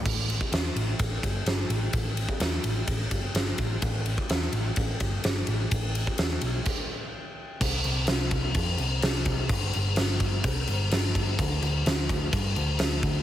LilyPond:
<<
  \new Staff \with { instrumentName = "Picked electric bass" } { \clef bass \time 4/4 \key a \minor \tempo 4 = 127 a,,4 e,8 a,,8 a,,8 g,,8 g,,8 a,,8 | a,,4 e,8 a,,8 a,,8 g,,8 g,,8 a,,8 | a,,4 e,8 a,,8 a,,8 g,,8 g,,8 a,,8 | a,,4 e,8 b,,8 r2 |
c,8 c,8 c,8 c,8 f,8 c,8 c,8 c,8 | g,,8 g,,8 g,,8 g,,8 c,8 g,,8 g,,8 g,,8 | d,8 d,8 d,8 d,8 g,8 d,8 d,8 d,8 | }
  \new DrumStaff \with { instrumentName = "Drums" } \drummode { \time 4/4 <cymc bd>8 cymr16 bd16 <cymr sn>8 cymr8 <bd cymr>8 <bd cymr>8 <cymr sn>8 cymr8 | <bd cymr>8 cymr16 bd16 <cymr sn>8 cymr8 <bd cymr>8 <bd cymr>8 <cymr sn>8 <bd cymr>8 | <bd cymr>8 cymr16 bd16 <cymr sn>8 cymr8 <bd cymr>8 <bd cymr>8 <cymr sn>8 cymr8 | <bd cymr>8 cymr16 bd16 <cymr sn>8 cymr8 <cymc bd>4 r4 |
<cymc bd>8 cymc8 <cymc sn>8 <cymc bd>8 <cymc bd>8 cymc8 <cymc sn>8 <cymc bd>8 | <cymc bd>8 cymc8 <cymc sn>8 <cymc bd>8 <cymc bd>8 cymc8 <cymc sn>8 <cymc bd>8 | <cymc bd>8 cymc8 <cymc sn>8 <cymc bd>8 <cymc bd>8 cymc8 <cymc sn>8 <cymc bd>8 | }
>>